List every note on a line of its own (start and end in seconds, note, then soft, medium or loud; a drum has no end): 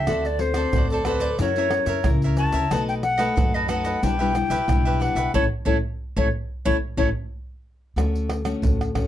0.00 0.27 E5 loud
0.07 0.64 D2 medium
0.07 0.70 D3 medium
0.07 0.27 C4 medium
0.07 0.27 F#4 medium
0.07 0.40 F#4 medium
0.07 0.27 A4 medium
0.07 0.40 A4 medium
0.07 0.40 C5 medium
0.07 0.41 D5 medium
0.07 pandeiro medium
0.07 tamborim medium
0.07 shaker medium
0.07 surdo medium
0.25 0.41 D5 medium
0.25 pandeiro soft
0.25 shaker soft
0.39 0.52 C4 medium
0.39 0.52 F#4 medium
0.39 0.52 A4 medium
0.39 0.90 C5 medium
0.39 muted cavaquinho stroke soft
0.39 pandeiro medium
0.54 1.00 C4 medium
0.54 1.00 F#4 medium
0.54 1.00 A4 medium
0.54 0.72 A4 medium
0.54 0.72 C5 medium
0.54 0.72 D5 medium
0.54 pandeiro medium
0.54 tamborim medium
0.54 shaker medium
0.73 1.30 D2 medium
0.73 1.36 A2 medium
0.73 0.90 F#4 soft
0.73 0.90 A4 medium
0.73 0.90 C5 medium
0.73 pandeiro medium
0.73 shaker medium
0.73 surdo loud
0.78 0.91 D5 medium
0.90 1.06 A4 medium
0.90 1.05 A4 medium
0.90 1.06 C5 medium
0.90 1.06 D5 medium
0.90 pandeiro soft
0.90 shaker soft
1.05 1.28 C4 medium
1.05 1.21 F#4 medium
1.05 1.28 F#4 medium
1.05 1.22 A4 medium
1.05 1.28 A4 medium
1.05 1.39 B4 medium
1.05 1.20 C5 medium
1.05 1.20 D5 medium
1.05 pandeiro medium
1.05 tamborim medium
1.05 shaker medium
1.20 1.38 A4 medium
1.20 1.38 C5 medium
1.20 1.37 D5 medium
1.20 pandeiro medium
1.20 shaker medium
1.39 1.81 F#2 loud
1.39 2.02 F#3 medium
1.39 1.51 C#4 medium
1.39 1.51 E4 medium
1.39 1.56 F#4 soft
1.39 1.51 A#4 medium
1.39 1.56 A#4 medium
1.39 2.08 C#5 medium
1.39 1.56 C#5 medium
1.39 pandeiro medium
1.39 shaker medium
1.39 surdo medium
1.43 1.56 E5 medium
1.56 1.67 C#4 medium
1.56 1.67 E4 medium
1.56 1.68 A#4 medium
1.56 1.73 A#4 medium
1.56 1.73 C#5 medium
1.56 1.72 E5 medium
1.56 pandeiro soft
1.56 shaker soft
1.70 1.99 C#4 medium
1.70 1.99 E4 medium
1.70 2.00 A#4 medium
1.70 muted cavaquinho stroke soft
1.70 pandeiro medium
1.70 tamborim medium
1.86 2.01 F#2 medium
1.86 2.21 A#4 medium
1.86 2.20 C#5 medium
1.86 2.20 E5 medium
1.86 pandeiro medium
1.86 shaker medium
2.04 2.48 C#2 loud
2.04 2.68 C#3 medium
2.04 2.66 C#4 medium
2.04 2.66 E4 medium
2.04 2.66 A#4 medium
2.04 pandeiro medium
2.04 tamborim medium
2.04 shaker medium
2.04 surdo loud
2.22 2.38 C#5 medium
2.22 2.38 E5 medium
2.22 pandeiro soft
2.22 shaker soft
2.26 2.37 A#4 medium
2.37 2.54 F#4 soft
2.37 2.54 A#4 soft
2.37 2.54 C#5 medium
2.37 2.53 E5 medium
2.37 2.84 A5 loud
2.37 pandeiro medium
2.37 shaker medium
2.52 2.68 C#2 medium
2.52 2.70 A#4 medium
2.52 2.70 C#5 medium
2.52 2.69 E5 medium
2.52 pandeiro medium
2.52 shaker medium
2.71 3.27 B1 medium
2.71 3.34 B2 medium
2.71 3.02 A3 medium
2.71 3.02 D#4 soft
2.71 3.02 D#4 medium
2.71 3.02 F#4 medium
2.71 3.03 A4 medium
2.71 3.03 B4 medium
2.71 3.03 D#5 medium
2.71 pandeiro medium
2.71 tamborim medium
2.71 shaker medium
2.71 surdo medium
2.88 2.94 G5 loud
2.88 pandeiro soft
2.88 shaker soft
3.03 3.56 F#5 loud
3.03 muted cavaquinho stroke soft
3.03 pandeiro medium
3.18 3.64 A3 medium
3.18 3.64 D#4 medium
3.18 3.64 F#4 medium
3.18 3.35 A4 medium
3.18 3.35 B4 medium
3.18 3.34 D#5 medium
3.18 pandeiro medium
3.18 tamborim medium
3.18 shaker medium
3.36 3.93 F#2 medium
3.36 4.00 F#3 medium
3.36 3.51 D#4 soft
3.36 3.52 A4 medium
3.36 3.52 B4 medium
3.36 3.52 D#5 medium
3.36 pandeiro medium
3.36 shaker medium
3.36 surdo loud
3.54 3.68 A4 medium
3.54 3.68 B4 medium
3.54 3.69 D#5 medium
3.54 pandeiro soft
3.54 shaker soft
3.68 3.99 A3 medium
3.68 3.84 D#4 medium
3.68 3.99 D#4 medium
3.68 3.99 F#4 medium
3.68 3.85 A4 medium
3.68 3.85 B4 medium
3.68 3.83 D#5 medium
3.68 4.05 F#5 medium
3.68 pandeiro medium
3.68 tamborim medium
3.68 shaker medium
3.85 4.01 A4 medium
3.85 4.01 B4 medium
3.85 4.01 D#5 medium
3.85 pandeiro medium
3.85 shaker medium
4.03 4.45 B1 medium
4.03 4.65 B2 medium
4.03 4.14 G3 medium
4.03 4.18 D4 soft
4.03 4.14 D4 medium
4.03 4.14 E4 medium
4.03 4.18 G4 soft
4.03 4.19 B4 medium
4.03 4.18 E5 soft
4.03 5.03 G5 loud
4.03 pandeiro medium
4.03 shaker medium
4.03 surdo medium
4.19 4.31 G3 medium
4.19 4.31 D4 medium
4.19 4.31 E4 medium
4.19 4.35 G4 medium
4.19 4.34 B4 medium
4.19 4.34 E5 medium
4.19 pandeiro soft
4.19 shaker soft
4.35 4.55 G3 medium
4.35 4.55 D4 medium
4.35 4.55 E4 medium
4.35 muted cavaquinho stroke soft
4.35 pandeiro medium
4.35 tamborim medium
4.35 shaker medium
4.50 4.65 B1 medium
4.50 4.83 G4 medium
4.50 4.83 B4 medium
4.50 4.83 E5 medium
4.50 pandeiro medium
4.50 shaker medium
4.68 5.10 B1 loud
4.68 5.31 B2 medium
4.68 5.29 G3 soft
4.68 5.30 D4 medium
4.68 5.30 E4 medium
4.68 pandeiro medium
4.68 tamborim medium
4.68 shaker medium
4.68 surdo loud
4.85 4.99 G4 medium
4.85 5.00 B4 medium
4.85 5.00 E5 medium
4.85 pandeiro soft
4.85 shaker soft
5.00 5.16 D4 soft
5.00 5.16 G4 medium
5.00 5.16 B4 medium
5.00 5.15 E5 medium
5.00 5.34 F#5 loud
5.00 pandeiro medium
5.15 5.30 B1 medium
5.15 5.33 G4 medium
5.15 5.33 B4 medium
5.15 5.32 E5 medium
5.15 pandeiro medium
5.15 shaker medium
5.34 5.46 A1 medium
5.34 5.45 A3 medium
5.34 5.45 C#4 medium
5.34 5.45 E4 loud
5.34 5.45 E4 medium
5.34 5.45 A4 loud
5.34 5.45 C#5 medium
5.34 surdo medium
5.65 5.79 A1 medium
5.65 5.77 A3 medium
5.65 5.77 C#4 medium
5.65 5.77 E4 medium
5.65 5.77 A4 medium
5.65 5.77 C#5 medium
5.65 surdo loud
6.17 6.29 A1 medium
6.17 6.28 A3 medium
6.17 6.28 C#4 medium
6.17 6.27 E4 medium
6.17 6.27 A4 medium
6.17 6.27 C#5 medium
6.17 6.28 C#5 loud
6.17 surdo loud
6.65 6.78 A1 medium
6.65 6.76 A3 medium
6.65 6.76 C#4 medium
6.65 6.76 E4 medium
6.65 6.76 A4 medium
6.65 6.76 C#5 medium
6.65 6.76 C#5 loud
6.65 surdo medium
6.97 7.10 A1 medium
6.97 7.08 A3 medium
6.97 7.09 C#4 loud
6.97 7.09 E4 medium
6.97 7.09 A4 medium
6.97 7.09 C#5 medium
6.97 surdo loud
7.96 8.53 D2 medium
7.96 8.60 D3 medium
7.96 8.41 A3 medium
7.96 8.41 C#4 medium
7.96 8.41 F#4 medium
7.96 pandeiro medium
7.96 tamborim medium
7.96 shaker medium
7.96 surdo medium
8.16 pandeiro soft
8.16 shaker soft
8.30 pandeiro medium
8.30 tamborim medium
8.45 8.90 A3 medium
8.45 8.90 C#4 medium
8.45 8.90 F#4 medium
8.45 pandeiro medium
8.45 tamborim medium
8.45 shaker medium
8.62 9.07 D2 medium
8.62 9.07 A2 medium
8.62 pandeiro medium
8.62 shaker medium
8.62 surdo loud
8.81 pandeiro soft
8.81 tamborim medium
8.81 shaker soft
8.95 9.07 A3 medium
8.95 9.07 C#4 medium
8.95 9.07 F#4 medium
8.95 pandeiro medium
8.95 tamborim medium
8.95 surdo medium